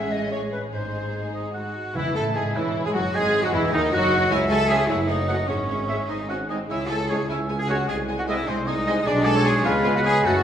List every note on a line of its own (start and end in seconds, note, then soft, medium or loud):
0.00 0.72 A1 medium
0.00 0.73 A2 medium
0.00 0.55 G#3 medium
0.00 0.71 G#3 medium
0.00 0.55 C#4 medium
0.00 0.69 C#4 medium
0.00 0.68 G#4 medium
0.00 0.11 E5 medium
0.00 0.12 E5 medium
0.12 0.21 D#5 medium
0.12 0.32 D#5 medium
0.32 0.41 C#5 medium
0.52 0.61 B4 medium
0.72 1.75 G#1 medium
0.72 1.34 G#2 medium
0.72 1.73 G#3 soft
0.72 1.71 G#3 soft
0.72 1.75 D#4 soft
0.72 1.71 D#4 soft
0.72 1.71 G#4 soft
0.72 1.33 C5 medium
1.34 1.53 D#4 medium
1.34 1.53 D#5 medium
1.54 1.95 F#4 medium
1.54 1.97 F#5 medium
1.95 2.17 E1 medium
1.95 2.14 E2 medium
1.95 2.51 C#3 medium
1.95 2.14 E3 medium
1.95 2.14 E4 medium
1.95 2.15 E4 medium
1.95 2.58 E5 medium
1.95 2.15 E5 medium
2.15 2.36 A1 medium
2.15 2.35 A2 medium
2.15 2.23 A3 medium
2.15 2.35 A3 medium
2.15 2.36 A3 medium
2.15 2.35 A4 medium
2.15 2.24 A4 medium
2.15 2.38 A5 medium
2.35 2.56 G#1 medium
2.35 2.55 G#2 medium
2.35 2.55 G#3 medium
2.35 2.43 G#3 medium
2.35 2.54 G#4 medium
2.35 2.55 G#4 medium
2.35 2.44 G#4 medium
2.35 2.58 G#5 medium
2.54 2.85 E1 medium
2.54 2.85 E2 medium
2.54 2.84 E3 medium
2.54 2.85 E3 medium
2.54 2.84 E4 medium
2.54 2.68 E4 medium
2.54 2.85 E4 medium
2.54 2.64 E4 medium
2.54 3.16 C#5 medium
2.54 2.85 E5 medium
2.84 2.95 G#2 medium
2.84 2.95 G#3 medium
2.84 2.89 G#3 medium
2.84 2.96 G#3 medium
2.84 2.95 G#4 medium
2.84 2.89 G#4 medium
2.84 2.95 G#4 medium
2.84 2.90 G#5 medium
2.94 3.03 F#1 medium
2.94 3.03 F#2 medium
2.94 3.02 F#3 medium
2.94 3.03 F#3 medium
2.94 3.02 F#4 medium
2.94 3.13 F#4 medium
2.94 3.15 F#4 medium
2.94 3.03 F#4 medium
2.94 3.17 F#5 medium
3.14 3.55 G#1 medium
3.14 3.43 G#2 medium
3.14 3.43 G#3 medium
3.14 3.42 G#4 medium
3.14 3.43 G#4 medium
3.14 3.44 G#4 medium
3.14 3.44 G#4 loud
3.14 4.32 D#5 medium
3.14 3.45 G#5 medium
3.43 3.54 F#2 medium
3.43 3.53 F#3 medium
3.43 3.54 F#3 medium
3.43 3.55 F#4 medium
3.43 3.48 F#4 medium
3.43 3.49 F#4 medium
3.43 3.54 F#4 medium
3.43 3.49 F#5 medium
3.52 3.75 E1 medium
3.52 3.73 E2 medium
3.52 3.72 E3 medium
3.52 3.73 E3 medium
3.52 3.73 E4 medium
3.52 3.62 E4 medium
3.52 3.73 E4 medium
3.52 3.75 E5 medium
3.72 3.93 D#2 medium
3.72 3.94 D#2 medium
3.72 3.92 D#3 medium
3.72 3.80 D#3 medium
3.72 3.93 D#3 medium
3.72 3.93 D#4 medium
3.72 3.92 D#4 medium
3.72 3.82 D#4 loud
3.72 3.93 D#4 loud
3.72 3.93 D#5 medium
3.91 4.30 F#1 medium
3.91 4.31 F#2 medium
3.91 4.30 F#3 medium
3.91 4.31 F#3 medium
3.91 4.31 F#3 loud
3.91 4.31 F#4 medium
3.91 4.32 F#4 medium
3.91 4.31 F#4 loud
3.91 4.32 F#4 loud
3.91 4.32 F#5 medium
4.31 4.82 C#2 loud
4.31 4.83 C#2 medium
4.31 4.39 G#3 medium
4.31 4.51 E4 loud
4.31 4.39 C#5 medium
4.31 4.91 E5 medium
4.31 4.51 E5 medium
4.31 4.39 G#5 medium
4.49 4.58 G#3 medium
4.49 4.70 A4 loud
4.49 4.58 C#5 medium
4.49 4.57 G#5 medium
4.49 4.60 A5 loud
4.68 4.77 C#3 medium
4.68 4.76 G#3 medium
4.68 4.77 G#3 medium
4.68 4.77 C#4 medium
4.68 4.89 G#4 loud
4.68 4.77 G#4 medium
4.68 4.77 C#5 medium
4.68 4.77 E5 medium
4.68 4.78 G#5 medium
4.68 4.89 G#5 medium
4.88 5.42 F#1 medium
4.88 4.96 A3 medium
4.88 5.09 E4 medium
4.88 5.49 C#5 medium
4.88 4.98 C#5 medium
4.88 4.99 E5 medium
4.88 4.98 F#5 medium
5.07 5.15 A3 medium
5.07 5.49 D#4 medium
5.07 5.16 C#5 medium
5.07 5.49 D#5 medium
5.07 5.17 F#5 medium
5.28 5.36 C#3 medium
5.28 5.36 A3 soft
5.28 5.37 A3 medium
5.28 5.36 C#4 medium
5.28 5.37 F#4 medium
5.28 5.36 C#5 medium
5.28 5.36 F#5 medium
5.28 5.37 F#5 soft
5.48 6.02 G#1 medium
5.48 6.03 G#1 medium
5.48 5.56 G#3 medium
5.48 6.09 C#4 medium
5.48 6.38 G#4 medium
5.48 5.56 C#5 medium
5.48 6.08 C#5 medium
5.48 5.58 E5 soft
5.68 5.77 G#3 soft
5.68 5.76 C#5 soft
5.68 5.78 E5 soft
5.88 5.96 G#2 medium
5.88 5.97 G#3 soft
5.88 5.97 G#3 medium
5.88 5.96 C#4 medium
5.88 5.96 G#4 medium
5.88 5.96 C#5 soft
5.88 5.96 E5 medium
5.88 5.98 E5 medium
6.09 6.63 G#1 medium
6.09 6.17 G#3 medium
6.09 6.29 D#4 medium
6.09 6.17 C5 soft
6.09 6.31 D#5 medium
6.09 6.18 G#5 soft
6.29 6.38 C#4 medium
6.29 6.37 F#4 medium
6.29 6.38 C5 soft
6.29 6.49 F#5 medium
6.29 6.37 G#5 medium
6.49 6.57 G#2 medium
6.49 6.57 G#3 medium
6.49 6.57 C4 medium
6.49 6.70 C4 soft
6.49 6.58 D#4 medium
6.49 6.57 G#4 soft
6.49 6.58 C5 soft
6.49 6.57 D#5 soft
6.49 6.59 D#5 medium
6.49 6.58 G#5 soft
6.69 7.22 C#2 medium
6.69 7.23 C#2 medium
6.69 6.77 G#3 medium
6.69 6.89 E4 loud
6.69 7.25 E4 medium
6.69 6.78 C#5 medium
6.69 6.79 E5 medium
6.69 6.77 G#5 medium
6.89 6.97 G#3 medium
6.89 7.09 A4 medium
6.89 6.97 C#5 medium
6.89 6.97 G#5 medium
6.89 7.11 A5 medium
7.09 7.17 G#2 medium
7.09 7.17 G#3 medium
7.09 7.18 G#3 medium
7.09 7.17 C#4 medium
7.09 7.29 G#4 medium
7.09 7.16 G#4 medium
7.09 7.16 C#5 medium
7.09 7.18 C#5 medium
7.09 7.29 G#5 medium
7.09 7.18 G#5 medium
7.29 7.82 C#2 medium
7.29 7.38 G#3 medium
7.29 7.88 C#4 medium
7.29 7.37 E4 medium
7.29 7.37 C#5 medium
7.29 7.58 E5 medium
7.29 7.38 G#5 medium
7.49 7.57 G#3 medium
7.49 7.57 C#5 medium
7.49 7.57 G#5 medium
7.59 7.69 G#4 medium
7.59 7.64 G#5 medium
7.68 7.76 G#2 medium
7.68 7.76 G#3 medium
7.68 7.77 G#3 medium
7.68 7.75 C#4 medium
7.68 7.89 F#4 medium
7.68 7.75 G#4 medium
7.68 7.77 C#5 medium
7.68 7.76 C#5 medium
7.68 7.88 F#5 medium
7.68 7.78 G#5 medium
7.88 8.41 C2 medium
7.88 7.97 G#3 medium
7.88 10.27 G#3 medium
7.88 7.96 G#4 medium
7.88 7.96 D#5 medium
7.88 8.02 G#5 medium
7.88 7.97 G#5 medium
8.08 8.16 G#3 medium
8.08 8.16 D#5 medium
8.08 8.17 G#5 medium
8.19 8.23 F#4 medium
8.19 8.28 F#5 medium
8.27 8.34 C3 medium
8.27 8.34 G#3 medium
8.27 8.36 G#3 medium
8.27 8.35 C4 medium
8.27 8.47 E4 loud
8.27 8.35 G#4 medium
8.27 8.35 D#5 medium
8.27 8.50 E5 medium
8.27 8.36 G#5 medium
8.48 9.00 C2 medium
8.48 8.56 G#3 medium
8.48 8.67 C4 loud
8.48 8.68 C5 medium
8.48 8.56 D#5 medium
8.48 8.56 G#5 medium
8.66 8.75 G#3 medium
8.66 9.05 D#4 loud
8.66 8.74 D#5 medium
8.66 9.06 D#5 medium
8.66 8.75 G#5 medium
8.86 8.94 C3 medium
8.86 8.93 G#3 medium
8.86 8.94 G#3 medium
8.86 8.93 C4 medium
8.86 8.94 G#4 medium
8.86 8.94 D#5 medium
8.86 8.93 D#5 medium
8.86 8.95 G#5 medium
9.04 9.58 B1 medium
9.04 9.50 B1 loud
9.04 9.61 B2 medium
9.04 9.60 G#3 medium
9.04 9.14 G#3 medium
9.04 9.61 D4 medium
9.04 9.26 D4 loud
9.04 9.61 G#4 medium
9.04 9.13 D5 medium
9.04 9.38 D5 medium
9.04 9.26 D5 loud
9.04 9.13 G#5 medium
9.25 9.34 G#3 medium
9.25 9.45 A4 loud
9.25 9.33 D5 medium
9.25 9.33 G#5 medium
9.25 9.45 A5 loud
9.36 9.67 C#5 medium
9.45 9.53 G#3 medium
9.45 9.65 G#4 loud
9.45 9.53 D5 medium
9.45 9.53 G#5 medium
9.45 9.54 G#5 medium
9.64 10.18 C#2 loud
9.64 10.18 C#2 medium
9.64 10.24 C#3 medium
9.64 10.24 G#3 medium
9.64 9.73 B3 medium
9.64 10.24 C#4 medium
9.64 9.95 F4 loud
9.64 10.24 G#4 medium
9.64 10.27 B4 medium
9.64 9.72 C#5 medium
9.64 9.97 F5 loud
9.64 9.72 G#5 medium
9.83 9.93 B3 medium
9.83 9.91 C#5 medium
9.83 9.93 G#5 medium
9.96 10.00 F#4 loud
9.96 10.05 F#5 medium
10.03 10.12 B3 medium
10.03 10.25 G#4 loud
10.03 10.11 C#5 medium
10.03 10.13 G#5 medium
10.03 10.28 G#5 loud
10.25 10.43 F#1 medium
10.25 10.43 F#2 medium
10.25 10.32 F#2 soft
10.25 10.43 C#3 medium
10.25 10.33 A3 medium
10.25 10.43 A3 medium
10.25 10.43 C#4 medium
10.25 10.43 F#4 loud
10.25 10.43 F#4 medium
10.25 10.43 A4 medium
10.25 10.33 C#5 medium
10.25 10.34 F#5 medium
10.25 10.43 F#5 medium
10.33 10.40 F#2 soft